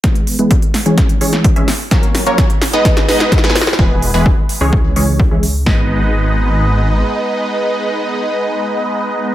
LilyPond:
<<
  \new Staff \with { instrumentName = "Supersaw synth" } { \time 4/4 \key gis \minor \tempo 4 = 128 <e gis b gis' b'>8. <e gis b gis' b'>8 r8 <e gis cis' gis' cis''>8. <e gis cis' gis' cis''>8. <e gis cis' gis' e''>16 r8 | <fis ais cis' ais' cis''>8. <fis ais cis' ais' cis''>8 r8 <gis b dis' b' dis''>8. <gis b dis' b' dis''>8. <gis b dis' b' gis''>16 r8 | <e gis b gis' b'>8. <e gis b gis' b'>8 r8 <e gis cis' gis' cis''>8. <e gis cis' gis' cis''>8. <e gis cis' gis' e''>16 r8 | <gis b dis' b' dis''>1~ |
<gis b dis' b' dis''>1 | }
  \new Staff \with { instrumentName = "Detuned saw bass" } { \clef bass \time 4/4 \key gis \minor r1 | r1 | e,,8. e,,16 r8. cis,8. cis,8. cis,8. | gis,,2. r4 |
r1 | }
  \new DrumStaff \with { instrumentName = "Drums" } \drummode { \time 4/4 <hh bd sn>16 hh16 hho16 hh16 <hh bd>16 hh16 <hho sn>16 hh16 <hh bd sn>16 hh16 hho16 <hh sn>16 <hh bd>16 hh16 <hho sn>8 | <hh bd sn>16 hh16 <hho sn>16 hh16 <hh bd sn>16 hh16 <hho sn>16 hh16 <hh bd sn>16 <hh sn>16 <hho sn>16 <hh sn>16 <hh bd sn>32 sn32 <hh sn>32 sn32 <hho sn>32 sn32 sn32 sn32 | bd8 hho8 bd8 hho8 bd8 hho8 bd8 hho8 | <bd sn>4 r4 r4 r4 |
r4 r4 r4 r4 | }
>>